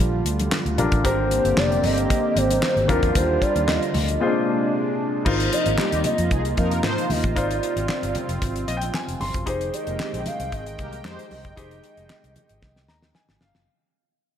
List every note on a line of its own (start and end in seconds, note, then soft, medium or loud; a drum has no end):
0.00 0.21 A#1 medium
0.00 2.85 D3 medium
0.00 1.02 G3 medium
0.00 0.74 D4 medium
0.00 0.74 F4 medium
0.00 1.00 F4 medium
0.00 0.74 G4 medium
0.00 0.75 A#4 medium
0.00 high conga soft
0.25 0.47 D2 medium
0.25 closed hi-hat medium
0.39 closed hi-hat soft
0.39 high conga medium
0.52 snare loud
0.52 clap loud
0.52 muted conga soft
0.52 high conga medium
0.66 0.76 D2 medium
0.66 closed hi-hat soft
0.78 0.90 A#1 medium
0.78 1.05 D4 medium
0.78 1.05 F4 medium
0.78 1.03 G4 soft
0.78 1.04 A#4 medium
0.78 closed hi-hat medium
0.78 muted conga soft
0.78 high conga medium
0.78 low conga medium
0.92 1.02 A1 medium
0.92 kick loud
0.92 closed hi-hat medium
1.04 1.38 G#1 loud
1.04 2.85 D3 medium
1.04 2.87 A#3 medium
1.04 2.85 C4 medium
1.04 2.87 C4 medium
1.04 2.85 G4 medium
1.04 2.87 G4 medium
1.04 2.85 A#4 medium
1.04 1.60 C5 loud
1.04 kick loud
1.04 closed hi-hat loud
1.31 closed hi-hat medium
1.31 muted conga soft
1.45 1.55 G1 loud
1.45 closed hi-hat soft
1.57 1.79 F1 medium
1.57 1.84 D5 loud
1.57 snare loud
1.57 clap medium
1.72 closed hi-hat soft
1.83 2.05 G1 medium
1.83 2.39 D#5 loud
1.83 open hi-hat medium
1.83 muted conga soft
1.83 high conga medium
1.83 low conga medium
1.98 closed hi-hat soft
2.10 kick loud
2.10 closed hi-hat medium
2.10 muted conga soft
2.10 high conga soft
2.36 2.58 G#1 medium
2.36 2.63 C5 loud
2.36 closed hi-hat medium
2.36 muted conga soft
2.51 closed hi-hat medium
2.51 high conga medium
2.63 2.91 C5 loud
2.63 snare loud
2.63 clap medium
2.63 high conga medium
2.76 2.87 G#1 medium
2.76 closed hi-hat soft
2.88 3.00 D#2 loud
2.88 4.17 D3 medium
2.88 4.20 D3 medium
2.88 4.19 G3 medium
2.88 4.18 F4 medium
2.88 4.19 F4 loud
2.88 4.18 G4 medium
2.88 4.18 A#4 medium
2.88 3.17 A#4 medium
2.88 kick loud
2.88 closed hi-hat medium
2.88 high conga medium
2.88 low conga medium
3.03 3.13 E2 medium
3.03 kick loud
3.03 closed hi-hat medium
3.15 3.37 D#2 loud
3.15 3.44 C5 loud
3.15 kick loud
3.15 closed hi-hat loud
3.15 muted conga soft
3.42 3.69 D5 loud
3.42 kick medium
3.42 closed hi-hat medium
3.42 muted conga soft
3.56 3.77 D#2 loud
3.56 closed hi-hat soft
3.68 4.20 D#5 medium
3.68 snare loud
3.68 clap medium
3.68 muted conga soft
3.83 closed hi-hat soft
3.94 4.16 D2 medium
3.94 open hi-hat medium
3.94 muted conga soft
3.94 high conga medium
3.94 low conga medium
4.08 closed hi-hat soft
4.20 5.23 A#2 medium
4.20 5.25 C3 medium
4.20 5.25 G#3 medium
4.20 4.27 C4 soft
4.20 5.25 D4 medium
4.20 5.24 F4 medium
4.20 5.24 G#4 medium
4.20 5.24 C5 medium
4.27 5.27 D4 medium
5.25 5.48 G#1 loud
5.25 9.43 C3 medium
5.25 7.34 A#3 medium
5.25 7.32 D#4 medium
5.25 7.32 F4 medium
5.25 9.43 F4 loud
5.25 7.32 A#4 medium
5.25 5.50 C5 loud
5.25 7.33 C5 medium
5.25 kick loud
5.25 crash medium
5.40 closed hi-hat medium
5.52 5.63 F3 medium
5.52 5.63 D#4 medium
5.52 5.63 C5 medium
5.52 6.02 D#5 loud
5.52 closed hi-hat medium
5.52 muted conga soft
5.66 5.76 G#1 medium
5.66 5.76 F3 medium
5.66 5.76 D#4 medium
5.66 5.76 A#4 medium
5.66 closed hi-hat soft
5.78 5.99 G3 loud
5.78 5.99 D#4 loud
5.78 5.99 G4 loud
5.78 snare loud
5.78 clap loud
5.92 6.03 D#2 medium
5.92 closed hi-hat medium
6.04 6.59 D#5 loud
6.04 closed hi-hat medium
6.04 muted conga soft
6.04 high conga medium
6.04 low conga medium
6.18 6.29 F2 medium
6.18 closed hi-hat medium
6.31 6.53 C2 loud
6.31 6.42 F3 medium
6.31 6.42 D#4 loud
6.31 6.42 G#4 loud
6.31 kick loud
6.31 closed hi-hat medium
6.31 high conga soft
6.45 closed hi-hat medium
6.57 6.79 F2 medium
6.57 6.79 F3 loud
6.57 6.79 D#4 loud
6.57 6.79 A#4 loud
6.57 7.12 F5 loud
6.57 kick loud
6.57 closed hi-hat medium
6.71 closed hi-hat medium
6.71 high conga medium
6.84 6.95 G#2 loud
6.84 7.05 F3 loud
6.84 7.05 D#4 loud
6.84 7.05 C5 loud
6.84 snare loud
6.84 clap medium
6.84 muted conga soft
6.84 high conga medium
6.98 closed hi-hat medium
7.10 7.21 D#2 medium
7.10 7.38 D#5 medium
7.10 open hi-hat medium
7.10 muted conga soft
7.10 high conga medium
7.10 low conga medium
7.24 7.34 A1 loud
7.24 kick loud
7.24 closed hi-hat medium
7.36 7.58 G#1 loud
7.36 9.45 C4 medium
7.36 9.42 D#4 medium
7.36 9.43 F4 medium
7.36 9.43 A#4 medium
7.36 9.43 C5 medium
7.36 8.15 D5 loud
7.36 kick loud
7.36 closed hi-hat loud
7.36 muted conga soft
7.51 closed hi-hat medium
7.63 closed hi-hat medium
7.76 7.87 G#1 loud
7.76 closed hi-hat medium
7.89 snare medium
7.89 clap medium
8.03 8.13 G1 medium
8.03 closed hi-hat medium
8.15 closed hi-hat medium
8.15 high conga medium
8.15 low conga medium
8.29 8.39 F1 medium
8.29 closed hi-hat medium
8.42 8.63 G#1 loud
8.42 kick loud
8.42 closed hi-hat medium
8.42 muted conga soft
8.42 high conga medium
8.56 closed hi-hat medium
8.67 8.89 A#1 medium
8.67 8.76 D#5 medium
8.67 closed hi-hat medium
8.77 8.93 G5 medium
8.81 closed hi-hat medium
8.81 high conga medium
8.94 9.19 G#5 medium
8.94 snare loud
8.94 clap loud
8.94 muted conga soft
8.94 high conga medium
9.08 9.18 F1 medium
9.08 closed hi-hat medium
9.20 9.32 G1 medium
9.20 9.45 C6 medium
9.20 open hi-hat medium
9.20 high conga medium
9.20 low conga medium
9.34 9.45 F#1 medium
9.34 kick loud
9.34 closed hi-hat medium
9.46 9.69 F1 loud
9.46 13.64 D#3 medium
9.46 13.64 G#3 medium
9.46 11.53 D#4 medium
9.46 11.53 G4 medium
9.46 11.53 G#4 medium
9.46 11.54 C5 medium
9.46 9.75 C5 loud
9.46 13.64 G5 medium
9.46 kick loud
9.46 closed hi-hat loud
9.61 closed hi-hat medium
9.74 9.85 G#3 medium
9.74 9.85 G4 medium
9.74 9.85 C5 medium
9.74 10.28 D#5 loud
9.74 closed hi-hat medium
9.74 muted conga soft
9.87 9.97 F1 loud
9.87 9.97 A#3 medium
9.87 9.97 G4 medium
9.87 9.97 A#4 medium
9.87 closed hi-hat soft
9.99 10.21 D#3 loud
9.99 10.21 C4 loud
9.99 10.21 G4 loud
9.99 snare loud
9.99 clap medium
9.99 muted conga soft
10.13 10.24 A#1 loud
10.13 closed hi-hat medium
10.26 10.55 F5 loud
10.26 closed hi-hat medium
10.26 muted conga soft
10.26 high conga medium
10.26 low conga medium
10.40 10.50 C2 medium
10.40 closed hi-hat medium
10.52 10.74 G#1 loud
10.52 10.63 D#3 medium
10.52 10.63 C4 medium
10.52 10.63 G#4 medium
10.52 13.16 D#5 loud
10.52 kick loud
10.52 closed hi-hat medium
10.52 high conga soft
10.66 closed hi-hat medium
10.78 11.00 C2 medium
10.78 11.00 A#3 loud
10.78 10.99 G4 loud
10.78 10.99 A#4 loud
10.78 kick loud
10.78 closed hi-hat medium
10.78 muted conga soft
10.93 closed hi-hat medium
10.93 high conga medium
11.04 11.16 F2 loud
11.04 11.26 G#3 loud
11.04 11.26 G4 loud
11.04 11.26 C5 loud
11.04 snare loud
11.04 clap loud
11.04 muted conga soft
11.04 high conga medium
11.19 closed hi-hat medium
11.31 11.42 C2 medium
11.31 open hi-hat medium
11.31 high conga medium
11.31 low conga medium
11.45 11.55 F#1 medium
11.45 kick medium
11.45 closed hi-hat medium
11.56 11.79 F1 loud
11.56 13.63 D#4 medium
11.56 13.64 G4 medium
11.56 13.64 G#4 medium
11.56 13.64 C5 medium
11.56 kick loud
11.56 closed hi-hat loud
11.56 muted conga soft
11.71 closed hi-hat medium
11.84 closed hi-hat medium
11.84 muted conga soft
11.97 12.08 F1 loud
11.97 closed hi-hat soft
12.10 snare loud
12.10 clap medium
12.24 12.34 C2 medium
12.24 closed hi-hat soft
12.36 closed hi-hat medium
12.36 muted conga soft
12.36 high conga medium
12.36 low conga medium
12.49 12.60 G#1 medium
12.49 closed hi-hat medium
12.62 12.89 C2 loud
12.62 kick loud
12.62 snare medium
12.62 high conga soft
12.76 snare medium
12.88 13.11 D#2 medium
12.88 13.13 A#5 medium
12.88 snare medium
13.03 snare medium
13.03 high conga medium
13.15 13.40 G#5 medium
13.15 snare medium
13.15 muted conga soft
13.15 high conga medium
13.29 13.39 G#1 medium
13.29 snare medium
13.41 13.53 G1 medium
13.41 13.66 F5 medium
13.41 snare loud
13.41 high conga medium
13.41 low conga medium
13.55 13.66 F#1 medium
13.55 snare loud